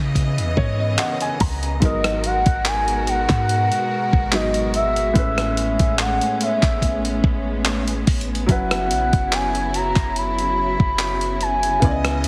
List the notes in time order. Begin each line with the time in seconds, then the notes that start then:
Already playing: C#3 E3 B3 E4 D#5
0.15 kick, closed hi-hat
0.38 E2, closed hi-hat
0.57 G#2 C#5, kick
0.80 D#5
0.98 F#5, clap, closed hi-hat
1.21 G#5, closed hi-hat
1.40 C#2 A#5, kick, closed hi-hat, open hi-hat
1.63 closed hi-hat
1.80 G#1 G#2 B2 F#3 G#3 B3 F#4 A#4 D#5, kick, closed hi-hat
1.85 A#4
2.04 cross-stick, closed hi-hat
2.24 F#5, closed hi-hat
2.46 G#1, kick, closed hi-hat
2.65 G#5, clap, closed hi-hat
2.88 closed hi-hat
3.07 F#5, closed hi-hat
3.29 G#2, kick, clap, closed hi-hat
3.49 closed hi-hat
3.72 closed hi-hat
4.13 G#1, kick
4.31 G#2 F#3 B3 F#4 D#5, clap, closed hi-hat
4.54 closed hi-hat
4.74 E5, closed hi-hat
4.96 closed hi-hat
5.13 A1 A2 G#3 B3 C#4, kick, closed hi-hat
5.18 B4
5.38 cross-stick, closed hi-hat
5.57 closed hi-hat
5.79 A1, kick, closed hi-hat
5.99 F#5, clap, closed hi-hat
6.21 closed hi-hat
6.41 E5, closed hi-hat
6.63 A1, kick, clap, closed hi-hat
6.82 kick, closed hi-hat
7.05 closed hi-hat
7.24 A1, kick
7.65 clap, closed hi-hat
7.88 closed hi-hat
8.07 A1, kick, closed hi-hat, open hi-hat
8.21 closed hi-hat
8.35 closed hi-hat
8.46 F#1 C#3 F#3 C#4 E4, kick, closed hi-hat
8.51 B4 F#5
8.71 cross-stick, closed hi-hat
8.90 A#1, closed hi-hat
9.13 F#1, kick, closed hi-hat
9.32 G#5, clap, closed hi-hat
9.55 closed hi-hat
9.74 A#5, closed hi-hat
9.96 F#1, kick, clap, closed hi-hat
10.16 B5, closed hi-hat
10.39 closed hi-hat
10.80 F#1, kick
10.99 clap, closed hi-hat
11.21 closed hi-hat
11.41 G#5, closed hi-hat
11.63 closed hi-hat
11.80 C#2 C#3 E3 B3 E4 D#5, kick, closed hi-hat
11.85 D5
11.91 D#5
12.05 cross-stick, closed hi-hat
12.24 G#2, closed hi-hat